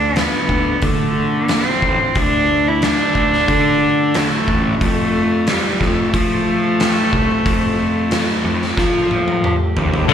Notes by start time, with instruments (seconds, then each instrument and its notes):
Already playing: picked electric bass D2, clean electric guitar D3 A3 D4, cello D4
0.15 clean electric guitar D3, cello B3, snare, open hi-hat
0.49 picked electric bass D2, clean electric guitar A3, kick
0.82 picked electric bass D3, clean electric guitar D3, cello A3, kick, open hi-hat
1.16 clean electric guitar A3
1.48 cello C4, clean electric guitar E4, snare, open hi-hat
1.82 picked electric bass A1, clean electric guitar D4, kick
2.15 picked electric bass D2, clean electric guitar D3, cello D4, kick, open hi-hat
2.51 clean electric guitar A3
2.68 cello E4
2.82 clean electric guitar D3, cello D4, snare, open hi-hat
3.15 picked electric bass D2, clean electric guitar A3, kick
3.33 snare
3.48 picked electric bass D3, clean electric guitar D3, kick, open hi-hat
3.82 clean electric guitar A3
4.14 cello A3, clean electric guitar E4, snare, open hi-hat
4.48 picked electric bass A1, clean electric guitar D4, kick
4.81 picked electric bass F2, clean electric guitar F3, cello A3, kick, open hi-hat
5.14 clean electric guitar A3
5.47 clean electric guitar F3, cello G3, snare, open hi-hat
5.80 picked electric bass F2, clean electric guitar A3, cello A3, kick, snare
6.14 clean electric guitar F3, picked electric bass F3, kick, open hi-hat
6.47 clean electric guitar A3
6.80 clean electric guitar G4, snare, open hi-hat
7.13 picked electric bass C2, clean electric guitar C4, kick
7.46 picked electric bass F2, clean electric guitar F3, kick, open hi-hat
7.78 clean electric guitar A3
8.11 clean electric guitar F3, snare, open hi-hat
8.45 picked electric bass F2, clean electric guitar A3
8.62 snare
8.77 picked electric bass F3, clean electric guitar F3, kick, snare
9.11 clean electric guitar A3, high tom
9.28 high tom
9.44 clean electric guitar G4, mid tom
9.77 picked electric bass D#2, clean electric guitar C4, floor tom
9.94 floor tom
10.09 distorted electric guitar D3 A3, string section A4